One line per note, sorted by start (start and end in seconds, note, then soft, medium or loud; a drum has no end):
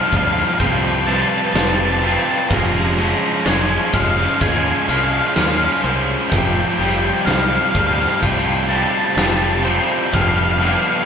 0.00 0.12 F2 medium
0.00 0.12 C3 medium
0.00 2.46 C3 medium
0.00 0.12 F3 medium
0.00 0.13 F3 loud
0.00 0.12 G3 loud
0.00 2.46 G3 medium
0.00 0.13 C4 loud
0.00 0.13 F4 loud
0.00 11.05 F4 medium
0.00 0.58 C5 loud
0.00 0.08 F5 medium
0.09 0.43 D2 medium
0.09 0.60 F2 medium
0.09 0.59 C3 medium
0.09 0.59 F3 loud
0.09 0.16 F5 medium
0.09 kick medium
0.13 0.60 F3 loud
0.13 0.59 G3 loud
0.13 0.60 C4 medium
0.13 0.61 F4 loud
0.13 0.24 F5 medium
0.13 crash medium
0.24 0.31 F5 medium
0.32 0.39 F5 medium
0.36 0.47 F5 medium
0.36 snare soft
0.48 0.54 F5 medium
0.54 0.59 F5 medium
0.59 1.21 C2 medium
0.59 1.07 F2 medium
0.59 1.07 C3 loud
0.59 1.08 F3 loud
0.59 1.07 G3 loud
0.59 1.08 C4 loud
0.59 1.09 F4 loud
0.59 2.49 B4 loud
0.59 0.67 G5 loud
0.59 kick medium
0.59 crash loud
0.68 0.76 G5 medium
0.76 0.84 G5 loud
0.84 0.93 G5 medium
0.93 1.00 G5 medium
1.00 1.08 G5 medium
1.07 1.55 F2 medium
1.07 1.55 C3 medium
1.07 1.55 F3 medium
1.07 1.56 F3 medium
1.07 1.54 G3 medium
1.07 1.56 C4 loud
1.07 1.56 F4 loud
1.07 1.14 A5 loud
1.07 crash medium
1.14 1.21 A5 medium
1.22 1.29 A5 medium
1.29 1.37 A5 medium
1.38 1.45 A5 medium
1.46 1.52 A5 medium
1.53 2.16 F1 medium
1.53 2.03 F2 medium
1.53 2.02 C3 loud
1.53 2.02 F3 medium
1.53 2.04 F3 loud
1.53 2.01 G3 loud
1.53 2.03 C4 loud
1.53 2.03 F4 loud
1.53 1.60 A5 medium
1.53 snare loud
1.53 crash loud
1.60 1.68 A5 medium
1.69 1.75 A5 medium
1.76 1.83 A5 medium
1.85 1.91 A5 medium
1.92 1.98 A5 medium
1.98 2.06 A5 medium
2.02 5.53 F2 medium
2.02 2.48 C3 medium
2.02 2.50 F3 medium
2.02 2.51 F3 medium
2.02 2.48 G3 medium
2.02 2.51 C4 medium
2.02 2.52 F4 medium
2.02 crash medium
2.07 2.15 A5 medium
2.15 2.22 A5 medium
2.23 2.30 A5 medium
2.31 2.38 A5 medium
2.38 2.46 A5 medium
2.49 3.12 F1 loud
2.49 2.98 C#3 medium
2.49 2.98 F3 loud
2.49 6.28 G#3 medium
2.49 2.97 G#3 loud
2.49 2.98 G#3 loud
2.49 6.28 C#4 medium
2.49 2.98 C#4 loud
2.49 2.99 C#4 loud
2.49 2.98 F4 loud
2.49 4.39 C5 loud
2.49 2.56 A#5 loud
2.49 kick loud
2.49 crash medium
2.56 2.64 A#5 medium
2.64 2.71 A#5 loud
2.72 2.79 A#5 loud
2.81 2.87 A#5 loud
2.87 2.94 A#5 medium
2.94 3.46 F3 medium
2.94 3.02 A#5 loud
2.94 crash medium
2.99 3.46 C#3 medium
2.99 3.45 G#3 medium
2.99 3.46 G#3 medium
2.99 3.46 C#4 loud
2.99 3.46 C#4 medium
2.99 3.47 F4 loud
3.03 3.10 A#5 loud
3.10 3.18 A#5 loud
3.18 3.25 A#5 loud
3.25 3.33 A#5 loud
3.34 3.40 A#5 medium
3.40 3.48 A#5 loud
3.45 3.76 F1 medium
3.45 3.93 C#3 loud
3.45 3.93 F3 medium
3.45 3.93 G#3 loud
3.45 3.94 G#3 loud
3.45 3.93 C#4 loud
3.45 3.94 C#4 loud
3.45 3.94 F4 loud
3.45 3.53 G#5 loud
3.45 snare loud
3.45 crash medium
3.53 3.61 G#5 medium
3.61 3.70 G#5 loud
3.71 3.77 G#5 medium
3.78 3.85 G#5 loud
3.86 3.93 G#5 medium
3.93 4.24 F1 loud
3.93 4.41 C#3 medium
3.93 4.41 F3 medium
3.93 4.40 G#3 loud
3.93 4.41 G#3 loud
3.93 4.41 C#4 medium
3.93 4.42 C#4 medium
3.93 4.42 F4 medium
3.93 4.01 F5 medium
3.93 kick medium
3.93 crash medium
4.02 4.10 F5 medium
4.11 4.18 F5 medium
4.18 4.25 F5 medium
4.18 snare soft
4.26 4.34 F5 medium
4.34 4.41 F5 medium
4.40 4.72 D#2 loud
4.40 4.89 C#3 medium
4.40 4.88 F3 loud
4.40 4.88 G#3 loud
4.40 4.89 G#3 loud
4.40 4.88 C#4 loud
4.40 4.90 C#4 loud
4.40 4.89 F4 loud
4.40 6.29 A#4 medium
4.40 4.49 G#5 loud
4.40 kick loud
4.40 crash medium
4.49 4.56 G#5 medium
4.56 4.62 G#5 loud
4.63 4.70 G#5 medium
4.72 4.78 G#5 medium
4.79 4.86 G#5 medium
4.89 5.19 C2 loud
4.89 5.36 C#3 medium
4.89 5.36 F3 medium
4.89 5.35 G#3 medium
4.89 5.37 G#3 medium
4.89 5.36 C#4 medium
4.89 5.37 C#4 medium
4.89 5.37 F4 medium
4.89 4.96 F5 medium
4.89 crash medium
4.96 5.04 F5 medium
5.05 5.12 F5 medium
5.12 5.19 F5 medium
5.20 5.26 F5 medium
5.27 5.34 F5 medium
5.35 5.67 D#2 medium
5.35 5.84 C#3 medium
5.35 5.83 F3 loud
5.35 5.83 G#3 loud
5.35 5.85 G#3 loud
5.35 5.83 C#4 loud
5.35 5.85 C#4 loud
5.35 5.84 F4 loud
5.35 5.40 F5 medium
5.35 snare loud
5.35 crash loud
5.41 5.48 F5 medium
5.50 5.57 F5 medium
5.58 5.64 F5 medium
5.64 5.72 F5 medium
5.72 5.80 F5 medium
5.84 6.15 C2 loud
5.84 6.29 C#3 medium
5.84 6.31 F3 medium
5.84 6.29 G#3 medium
5.84 6.30 G#3 loud
5.84 6.29 C#4 loud
5.84 6.30 C#4 loud
5.84 6.33 F4 loud
5.84 6.32 C5 medium
5.84 crash medium
6.30 6.63 F1 loud
6.30 6.79 F2 medium
6.30 10.10 C3 medium
6.30 6.79 C3 loud
6.30 6.80 F3 loud
6.30 6.81 F3 loud
6.30 6.80 G3 loud
6.30 11.05 G3 medium
6.30 6.80 C4 loud
6.30 6.81 G4 loud
6.30 10.10 C5 medium
6.30 6.37 G5 loud
6.30 kick loud
6.30 crash medium
6.37 6.45 G5 medium
6.45 6.53 G5 loud
6.53 6.60 G5 medium
6.61 6.67 G5 loud
6.68 6.74 G5 medium
6.75 6.82 G5 loud
6.79 7.10 F1 loud
6.79 7.27 F2 medium
6.79 7.27 C3 loud
6.79 7.26 F3 medium
6.79 7.28 F3 loud
6.79 7.27 G3 medium
6.79 7.27 C4 loud
6.79 7.28 G4 loud
6.79 snare soft
6.79 crash medium
6.84 6.90 G5 medium
6.90 6.98 G5 loud
6.98 7.06 G5 medium
7.06 7.14 G5 medium
7.14 7.22 G5 medium
7.22 7.32 F5 loud
7.22 7.25 G5 medium
7.27 7.57 C2 loud
7.27 7.74 F2 loud
7.27 7.74 C3 loud
7.27 7.74 F3 loud
7.27 7.75 F3 loud
7.27 7.74 G3 loud
7.27 7.74 C4 loud
7.27 7.75 G4 loud
7.27 snare loud
7.27 crash medium
7.32 7.40 F5 medium
7.40 7.47 F5 medium
7.48 7.55 F5 medium
7.56 7.62 F5 medium
7.63 7.70 F5 medium
7.70 7.78 F5 medium
7.74 8.05 D2 loud
7.74 8.22 F2 medium
7.74 8.21 C3 medium
7.74 8.21 F3 loud
7.74 8.22 F3 loud
7.74 8.22 G3 medium
7.74 8.21 C4 medium
7.74 8.22 G4 loud
7.74 kick medium
7.74 crash medium
7.78 7.86 F5 medium
7.87 7.94 F5 medium
7.94 8.01 F5 medium
7.99 8.09 F5 medium
7.99 snare soft
8.09 8.16 F5 medium
8.16 8.21 F5 medium
8.21 8.84 C2 loud
8.21 8.68 F2 medium
8.21 8.68 C3 medium
8.21 8.69 F3 loud
8.21 8.69 F3 medium
8.21 8.69 G3 loud
8.21 8.69 C4 loud
8.21 9.17 F4 medium
8.21 8.70 G4 loud
8.21 8.29 G5 loud
8.21 kick medium
8.21 crash loud
8.30 8.37 G5 medium
8.38 8.46 G5 loud
8.46 8.53 G5 medium
8.53 8.62 G5 medium
8.64 8.68 G5 medium
8.69 9.16 F2 medium
8.69 9.16 C3 medium
8.69 9.17 F3 medium
8.69 9.17 G3 medium
8.69 9.17 C4 medium
8.69 9.18 G4 loud
8.69 8.76 A5 loud
8.69 crash medium
8.77 8.83 A5 medium
8.83 8.91 A5 loud
8.92 8.99 A5 loud
9.00 9.06 A5 loud
9.06 9.14 A5 medium
9.15 9.78 F1 loud
9.15 9.64 F2 loud
9.15 9.64 C3 loud
9.15 9.65 F3 loud
9.15 9.64 F3 loud
9.15 9.64 G3 loud
9.15 9.64 C4 loud
9.15 10.64 F4 medium
9.15 9.65 G4 loud
9.15 9.22 A5 loud
9.15 snare loud
9.15 crash loud
9.23 9.29 A5 medium
9.30 9.37 A5 loud
9.37 9.44 A5 medium
9.44 9.52 A5 medium
9.52 9.60 A5 medium
9.60 10.11 F3 loud
9.60 9.70 G5 loud
9.60 9.63 A5 loud
9.64 10.13 F2 medium
9.64 10.10 C3 loud
9.64 10.13 F3 medium
9.64 10.12 G3 medium
9.64 10.10 C4 medium
9.64 10.12 G4 medium
9.64 10.13 C5 medium
9.64 crash medium
9.71 9.78 G5 medium
9.79 9.84 G5 loud
9.84 9.92 G5 medium
9.92 9.98 G5 medium
9.99 10.06 G5 medium
10.06 10.13 G5 medium
10.12 10.75 F1 loud
10.12 10.59 G2 medium
10.12 11.05 D3 medium
10.12 10.59 D3 medium
10.12 10.59 F3 loud
10.12 10.60 G3 loud
10.12 10.60 B3 loud
10.12 10.60 D4 loud
10.12 10.60 G4 loud
10.12 11.05 B4 loud
10.12 10.20 F5 loud
10.12 kick loud
10.12 crash medium
10.21 10.28 F5 medium
10.28 10.36 F5 medium
10.36 10.44 F5 medium
10.44 10.51 F5 medium
10.51 10.59 F5 medium
10.59 11.05 G2 medium
10.59 11.05 D3 medium
10.59 11.05 F3 medium
10.59 11.05 G3 medium
10.59 11.05 B3 medium
10.59 11.05 D4 loud
10.59 11.05 G4 loud
10.59 10.65 F5 medium
10.59 snare soft
10.59 crash medium
10.66 10.73 F5 medium
10.74 10.81 F5 medium
10.81 10.89 F5 medium
10.89 10.96 F5 medium
10.97 11.04 F5 medium